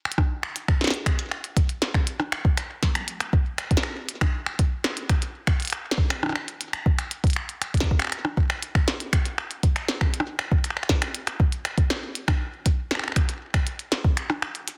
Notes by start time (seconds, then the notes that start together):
0.05 finger snap
0.12 closed hi-hat
0.18 kick, percussion blips
0.43 finger snap
0.56 closed hi-hat
0.68 finger snap, kick
0.81 snare
0.84 snare
0.87 snare
0.90 snare, closed hi-hat
1.06 finger snap, kick, closed hi-hat
1.19 closed hi-hat
1.31 finger snap
1.44 closed hi-hat
1.57 kick, closed hi-hat
1.69 closed hi-hat
1.82 snare
1.94 finger snap, kick
2.07 closed hi-hat
2.20 percussion blips
2.32 finger snap
2.45 kick
2.57 finger snap, closed hi-hat
2.83 kick, snare
2.95 finger snap, closed hi-hat
3.08 closed hi-hat
3.20 finger snap, closed hi-hat
3.33 kick
3.58 finger snap, closed hi-hat
3.71 kick, closed hi-hat
3.77 snare
3.83 finger snap
4.09 closed hi-hat
4.21 finger snap, kick, percussion blips
4.46 finger snap
4.59 kick, closed hi-hat
4.84 finger snap, snare
4.97 closed hi-hat
5.09 finger snap, kick, closed hi-hat
5.22 closed hi-hat
5.47 finger snap, kick
5.60 closed hi-hat
5.62 closed hi-hat
5.65 closed hi-hat
5.67 closed hi-hat
5.70 finger snap, closed hi-hat
5.91 snare
5.98 kick
6.10 finger snap, closed hi-hat
6.23 percussion blips
6.26 percussion blips
6.29 percussion blips
6.32 finger snap, percussion blips
6.48 closed hi-hat
6.61 closed hi-hat
6.73 finger snap, closed hi-hat
6.86 kick
6.99 finger snap, closed hi-hat
7.11 closed hi-hat
7.24 kick, closed hi-hat
7.27 closed hi-hat
7.30 closed hi-hat
7.33 finger snap, closed hi-hat
7.49 closed hi-hat
7.62 finger snap, closed hi-hat
7.74 kick, closed hi-hat
7.77 snare, closed hi-hat
7.80 kick, closed hi-hat
7.91 kick
7.99 finger snap, closed hi-hat
8.02 finger snap
8.05 finger snap
8.07 finger snap
8.10 finger snap
8.12 finger snap, closed hi-hat
8.25 percussion blips
8.37 kick
8.50 finger snap
8.62 closed hi-hat
8.75 finger snap, kick
8.88 snare
9.00 closed hi-hat
9.13 finger snap, kick, closed hi-hat
9.26 closed hi-hat
9.38 finger snap
9.51 closed hi-hat
9.63 kick, closed hi-hat
9.76 finger snap, closed hi-hat
9.88 snare
10.01 finger snap, kick
10.14 closed hi-hat
10.20 percussion blips
10.39 finger snap
10.52 kick
10.64 finger snap, closed hi-hat
10.70 finger snap
10.77 finger snap
10.83 finger snap
10.89 kick, snare
11.02 finger snap, closed hi-hat
11.15 closed hi-hat
11.27 finger snap, closed hi-hat
11.40 kick
11.52 closed hi-hat
11.65 finger snap, closed hi-hat
11.78 kick, closed hi-hat
11.90 finger snap, snare
12.15 closed hi-hat
12.28 finger snap, kick, percussion blips
12.66 kick, closed hi-hat
12.91 finger snap, snare
12.95 finger snap
12.99 finger snap
13.04 finger snap
13.08 finger snap
13.12 finger snap
13.16 finger snap, kick, closed hi-hat
13.29 closed hi-hat
13.54 finger snap, kick, closed hi-hat
13.67 closed hi-hat
13.79 closed hi-hat
13.92 snare
14.04 kick
14.17 finger snap, closed hi-hat
14.30 percussion blips
14.42 finger snap
14.55 closed hi-hat
14.68 closed hi-hat